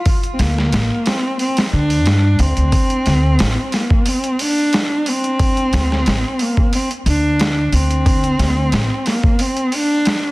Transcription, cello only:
0.34 C4
0.40 A#3
1.07 C4
1.40 C4
1.74 D4
2.40 C4
3.75 A#3
4.08 C4
4.41 D4
5.08 C4
6.41 A#3
6.74 C4
7.09 D4
7.74 C4
9.08 A#3
9.41 C4
9.75 D4

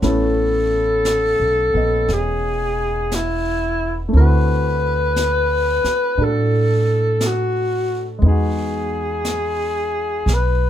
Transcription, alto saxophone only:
0.07 A4
2.13 G#4
3.15 E4
4.17 B4
6.24 A4
7.27 F#4
8.28 G#4
10.34 B4

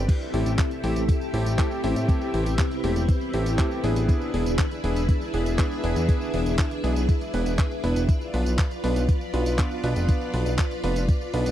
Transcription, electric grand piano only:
0.34 A3 C4 E4 G4
0.84 A3 C4 E4 G4
1.34 A3 C4 E4 G4
1.84 A3 C4 E4 G4
2.34 A3 C4 E4 G4
2.84 A3 C4 E4 G4
3.34 A3 C4 E4 G4
3.84 B3 D4 E4 G#4
4.34 B3 D4 E4 G#4
4.84 B3 D4 E4 G#4
5.34 B3 D4 E4 G#4
5.84 B3 D4 E4 G#4
6.34 B3 D4 E4 G#4
6.84 B3 D4 E4 G#4
7.34 B3 D4 E4 B4
7.84 B3 D4 E4 B4
8.34 B3 D4 F4 B4
8.84 B3 D4 F4 B4
9.34 B3 D4 F4 B4
9.84 B3 D4 F4 B4
10.34 B3 D4 F4 B4
10.84 B3 D4 F4 B4
11.34 B3 D4 F4 B4

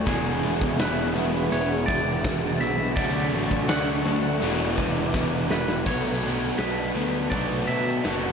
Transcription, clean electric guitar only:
0.08 G#4
0.80 B4
1.52 C#5
1.86 D5
2.61 E5
2.96 D5
3.68 F#5
5.51 B4
5.87 C#5
6.58 B4
7.30 D5
7.67 E5

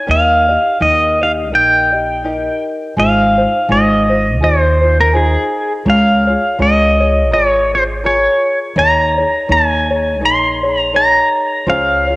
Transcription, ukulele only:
0.06 D#4 G4 A#4 D#5
0.49 D#4 G4 D#5
0.80 D#4 G4 A#4 D#5
1.21 D#4 G4 D#5
1.52 D#4 G4 A#4 D#5
1.92 D#4 G4 D#5
2.24 D#4 G4 A#4 D#5
2.97 D#4 F4 G#4 C5
3.38 D#4 F4 C5
3.68 D#4 F4 G#4 C5
4.09 D#4 F4 C5
4.41 D#4 F4 G#4 C5
4.81 D#4 F4 C5
5.13 D#4 F4 G#4 C5
5.85 F4 G#4 A#4 C#5
6.27 F4 G#4 C#5
6.59 F4 G#4 A#4 C#5
7.00 F4 G#4 C#5
7.31 F4 G#4 A#4 C#5
7.73 F4 G#4
8.04 F4 G#4 A#4 C#5
8.76 D#4 G#4 A#4 C#5
9.17 D#4 G#4 C#5
9.48 D#4 G#4 A#4 C#5
9.90 D#4 G#4 C#5
10.21 D#4 G#4 A#4 C#5
10.63 D#4 G#4 C#5
10.93 D#4 G#4 A#4 C#5
11.66 F4 G#4 C5 C#5
12.07 F4 G#4 C#5

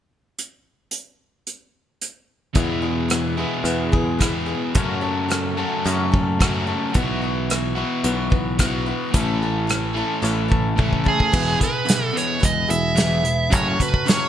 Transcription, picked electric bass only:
2.56 E2
3.64 E2
4.75 F#2
5.86 F#2
6.95 B1
8.04 B1
9.14 A1
10.23 A1
11.33 E1
12.44 E1
12.69 E1
13.53 F#1

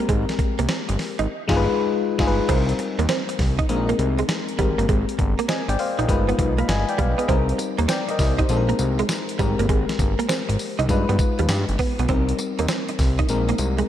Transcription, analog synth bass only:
0.09 G#1
0.59 C2
0.89 G1
1.19 G#1
1.49 G1
2.19 G1
2.49 C2
2.99 D#2
3.39 C2
3.69 A#1
3.99 C2
4.59 G#1
4.78 G1
4.89 G#1
5.19 G1
5.68 G#1
5.98 A#1
6.09 G1
6.39 B1
6.69 G1
6.99 B1
7.29 C2
7.79 D#2
8.19 C2
8.49 A#1
8.79 C2
9.39 G#1
9.59 G1
9.69 G#1
9.99 G1
10.49 G#1
10.79 C2
10.89 G2
11.09 G2
11.39 D#2
11.49 G2
11.69 G1
11.99 B1
12.09 C2
12.59 D#2
12.99 C2
13.29 A#1
13.59 C2

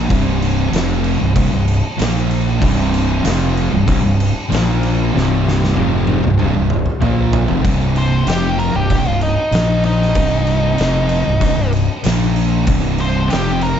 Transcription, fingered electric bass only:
0.10 C1
0.72 F1
1.21 C1
1.36 C1
1.52 C1
2.00 A#1
2.62 C1
3.25 F1
3.73 C1
3.88 C1
4.04 C1
4.51 A#1
5.15 C1
5.78 F1
6.24 C1
6.41 C1
6.56 C1
7.02 A#1
7.49 F1
7.65 C1
8.26 F1
8.74 C1
8.90 C1
9.05 C1
9.51 A#1
10.15 C1
10.79 F1
11.27 C1
11.41 C1
11.57 C1
12.05 A#1
12.67 C1
13.32 F1

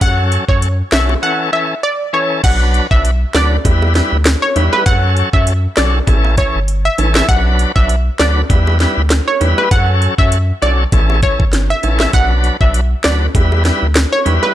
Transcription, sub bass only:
0.01 F#2
0.48 F#2
0.92 B1
2.44 B1
2.91 B1
3.34 D2
3.65 E2
4.12 D2
4.56 E2
4.86 F#2
5.33 F#2
5.77 B1
6.07 A1
6.55 G1
6.98 A1
7.29 B1
7.76 B1
8.20 D2
8.50 E2
8.97 D2
9.41 E2
9.71 F#2
10.18 F#2
10.62 B1
10.92 A1
11.40 G1
11.83 A1
12.14 B1
12.61 B1
13.05 D2
13.35 E2
13.82 D2
14.26 E2

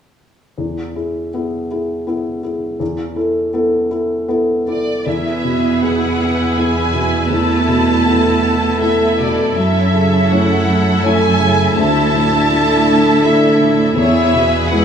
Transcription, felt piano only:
0.58 E2
0.95 E4 G#4
1.34 B3 E4 G#4
1.71 E4 G#4
2.07 B3 E4 G#4
2.43 E4 G#4
2.80 E2
3.16 E4 A4
3.53 B3 E4 A4
3.91 E4 A4
4.28 B3 E4 A4
4.67 E4 A4
5.06 E2
5.44 B2
5.82 B3 E4 G#4
6.19 B3
6.57 B3 E4 G#4
6.93 B2
7.30 E2
7.67 B2
8.05 B3 E4 A4
8.43 B3
8.81 B3 E4 A4
9.19 B2
9.56 F#2
9.93 C#3
10.30 A3 E4 C#5
10.66 A3
11.03 A3 E4 C#5
11.39 C#3
11.76 D2
12.13 A2
12.50 A3 E4 D5
12.86 A3
13.24 A3 E4 D5
13.59 A2
13.96 E2
14.33 B2
14.70 G#3 E4 B4

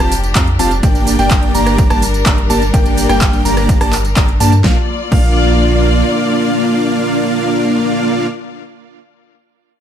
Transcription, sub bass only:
0.00 F1
0.36 F2
0.59 F1
0.83 G1
1.19 G1
1.55 G1
1.90 G1
2.26 G1
2.50 G1
2.74 G1
3.09 G1
3.45 G1
3.81 G1
4.17 G1
4.40 G2
4.64 A#1
5.12 A#1

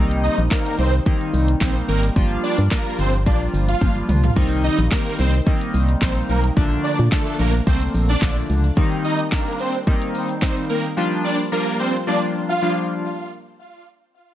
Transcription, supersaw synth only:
0.23 D#4 D#5
0.51 A#3 A#4
0.78 C4 C5
1.61 C4 C5
1.88 A#3 A#4
2.43 D4 D5
2.71 A#3 A#4
2.99 C4 C5
3.26 D4 D5
3.69 F4 F5
4.64 D#4 D#5
4.91 A#3 A#4
5.19 C4 C5
6.02 C4 C5
6.29 A#3 A#4
6.84 D4 D5
7.12 A3 A4
7.39 A#3 A#4
7.67 C4 C5
8.09 D4 D5
9.04 D#4 D#5
9.32 A#3 A#4
9.60 C4 C5
10.42 C4 C5
10.69 A#3 A#4
11.24 D4 D5
11.52 A#3 A#4
11.79 C4 C5
12.07 D4 D5
12.49 F4 F5

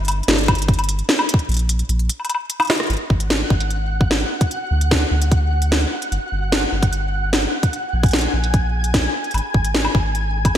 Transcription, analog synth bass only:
Already playing: G1
0.28 G1
1.49 A#1
1.89 A#1
2.90 G#1
3.10 G#1
3.50 G#1
4.71 D2
5.11 D2
6.12 G1
6.32 G1
6.72 G1
7.93 A#1
8.34 A#1
9.34 G#1
9.54 G#1
9.95 G#1

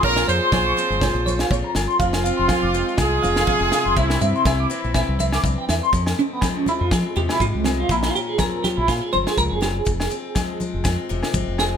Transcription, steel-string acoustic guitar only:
Already playing: F3 C4
0.03 A#2 F4
0.29 C#4
0.53 F4
0.77 F3 C4
1.02 F4
1.26 C#4
1.51 F2 F4
2.00 F2 C4
2.26 C4
2.74 F3 G#3
2.99 C4
3.23 C4
3.48 C3 C4
3.96 C3 C4
4.21 C4
4.47 C4
4.70 E3 C4
4.95 C4
5.20 C4
5.44 G2 C4
5.93 F2
6.20 C4
6.42 F3 G#3
6.67 C4
6.92 C4
7.16 C3 G#3
7.41 C4
7.67 G#3
7.90 A#2
8.17 C#4
8.40 F3 C4
8.64 C#4
8.89 C#4
9.13 F2 C4
9.38 G#2
9.61 G2
9.85 F2
10.11 C4
10.36 F3 G#3
10.60 C4
10.85 C4
11.09 C3 G#3
11.35 C4
11.59 G#3

